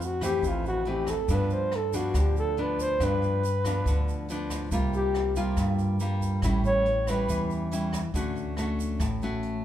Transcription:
Already playing: F2
0.02 F#4, shaker
0.21 E3 A3 C4 G4, kick, cross-stick, closed hi-hat, shaker
0.42 A1 F2, kick, closed hi-hat, shaker
0.48 F4
0.63 closed hi-hat, shaker
0.68 F#4
0.85 E3 A3 C4, closed hi-hat
0.90 G4
1.07 A4, kick, cross-stick, closed hi-hat, shaker
1.28 G2 F3 B3 D4, kick, closed hi-hat, shaker
1.34 B4
1.50 C5, closed hi-hat, shaker
1.72 cross-stick, closed hi-hat
1.76 A4
1.93 F3 B3 D4 F#4, kick, closed hi-hat, shaker
2.14 D2 D3, kick, cross-stick, closed hi-hat, shaker
2.19 G4
2.35 A4, closed hi-hat, shaker
2.57 F3 B3 D4, closed hi-hat
2.61 B4
2.78 C5, kick, closed hi-hat, shaker
3.00 G2 F3 B3 D4, kick, cross-stick, closed hi-hat, shaker
3.04 B4
3.22 closed hi-hat, shaker
3.43 closed hi-hat, shaker
3.64 F3 B3 D4, kick, cross-stick, closed hi-hat, shaker
3.85 D2 D3, kick, closed hi-hat, shaker
4.07 closed hi-hat, shaker
4.28 F3 B3 D4, closed hi-hat, shaker
4.50 kick, cross-stick, closed hi-hat, shaker
4.71 C2 C3 G3 A#3 F4, kick, closed hi-hat, shaker
4.93 G4, closed hi-hat, shaker
5.14 cross-stick, closed hi-hat
5.35 G3 A#3 F4, kick, closed hi-hat, shaker
5.57 G2, kick, cross-stick, closed hi-hat, shaker
5.78 closed hi-hat, shaker
5.99 G3 A#3 F4, closed hi-hat, shaker
6.21 kick, closed hi-hat, shaker
6.42 A1 A2 G3 C#4 E4, kick, cross-stick, closed hi-hat, shaker
6.63 C#5, closed hi-hat, shaker
6.85 closed hi-hat
7.07 G3 C#4 E4 B4, kick, cross-stick, closed hi-hat, shaker
7.28 E2 E3, kick, closed hi-hat, shaker
7.50 closed hi-hat, shaker
7.71 G3 C#4 E4, closed hi-hat, shaker
7.93 kick, cross-stick, closed hi-hat, shaker
8.14 D2 D3 A3 C#4 F#4, kick, closed hi-hat, shaker
8.35 closed hi-hat, shaker
8.57 A3 C#4 F#4, cross-stick, closed hi-hat, shaker
8.78 kick, closed hi-hat, shaker
9.00 A1 A2, kick, cross-stick, closed hi-hat, shaker
9.21 A3 C#4 F#4, closed hi-hat, shaker
9.43 closed hi-hat

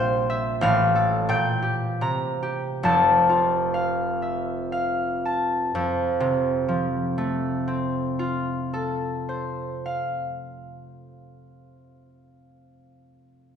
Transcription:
Already playing: A#1 A#2 G4 E5 F5 G5
0.00 C5
0.30 E5
0.61 A1 A2 F5
0.95 A4
1.29 A#2 G5
1.62 G4
2.01 C3 A#5
2.43 G4
2.83 F1 F2 A5
3.29 F4
3.74 F5
4.22 E5
4.72 F5
5.25 A5
5.75 F2
6.20 C3
6.68 F3
7.18 A3
7.68 C4
8.19 F4
8.74 A4
9.29 C5
9.86 F5

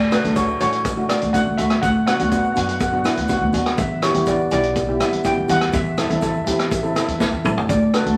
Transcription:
Already playing: D2
0.11 A3 D4 F#4 B4, cross-stick, closed hi-hat, shaker
0.24 D2 A3 D4 A4, closed hi-hat, shaker
0.36 A3 D4 F#4 C#5, kick, closed hi-hat, shaker
0.48 shaker
0.60 A1 A3 D4 F#4 C#5, closed hi-hat, shaker
0.72 closed hi-hat
0.85 kick, closed hi-hat, shaker
0.97 A3 D4 F#4
1.09 A3 D4 F#4 D5, cross-stick, closed hi-hat, shaker
1.21 D2, closed hi-hat, shaker
1.33 A3 D4 F#4 F#5, kick, closed hi-hat, shaker
1.47 D2
1.58 D2 A3 D4 F#4 E5, closed hi-hat, shaker
1.70 cross-stick, closed hi-hat
1.82 D2 F#5, kick, closed hi-hat, shaker
2.07 B3 D4 F#4 F#5, cross-stick, closed hi-hat, shaker
2.15 F#5
2.19 D2 B3 D4 F#4 F#5, closed hi-hat, shaker
2.30 B3 D4 F#4 F#5, kick, closed hi-hat, shaker
2.37 F#5
2.44 F#5, shaker
2.52 B3 D4 F#4 F#5, shaker
2.56 F#2 F#5, closed hi-hat
2.68 F#5, closed hi-hat
2.76 F#5
2.80 F#5, kick, closed hi-hat, shaker
2.90 B3 D4 F#4 F#5
2.99 F#5
3.04 B3 D4 E4 F#5, cross-stick, closed hi-hat, shaker
3.14 D2 F#5, closed hi-hat, shaker
3.21 F#5
3.28 B3 D4 F#4 F#5, kick, closed hi-hat, shaker
3.37 D2 F#5
3.53 D#2 B3 D4 F#4, closed hi-hat, shaker
3.66 cross-stick, closed hi-hat
3.78 E2 E5, kick, closed hi-hat, shaker
4.02 B3 E4 G4 C#5, cross-stick, closed hi-hat, shaker
4.14 E2 B3 E4 G4, closed hi-hat, shaker
4.26 B3 E4 G4 D5, kick, closed hi-hat, shaker
4.51 B1 B3 E4 G4 D5, closed hi-hat, shaker
4.63 closed hi-hat
4.76 kick, closed hi-hat, shaker
4.88 B3 E4 G4
5.00 B3 E4 G4 E5, cross-stick, closed hi-hat, shaker
5.12 E2, closed hi-hat, shaker
5.24 B3 E4 G4 G5, kick, closed hi-hat, shaker
5.37 E2
5.48 E2 B3 E4 G4 F#5, closed hi-hat, shaker
5.61 cross-stick, closed hi-hat
5.73 E2 E5, kick, closed hi-hat, shaker
5.97 C4 E4 A4 E5, cross-stick, closed hi-hat, shaker
6.08 E2 C4 E4 A4 E5, closed hi-hat, shaker
6.15 E5
6.21 C4 E4 A4 E5, kick, closed hi-hat, shaker
6.30 E5, shaker
6.38 E5
6.45 E2 C4 E4 G4 E5, closed hi-hat, shaker
6.52 E5
6.59 E5, cross-stick, closed hi-hat
6.67 E5
6.71 E5, kick, closed hi-hat, shaker
6.83 C4 E4 A4 E5, shaker
6.90 E5
6.96 C4 E4 A4, cross-stick, closed hi-hat, shaker
7.05 E2 E5, closed hi-hat
7.13 E5
7.19 C4 E4 A4 E5, kick, snare, shaker
7.29 E2 E5
7.44 A1 C4 E4 A4, mid tom, shaker
7.57 floor tom, shaker
7.69 D2 D5, kick, closed hi-hat, shaker
7.94 D4 F#4 A4 B4, cross-stick, closed hi-hat, shaker
8.05 D2 D4 F#4 A4, closed hi-hat

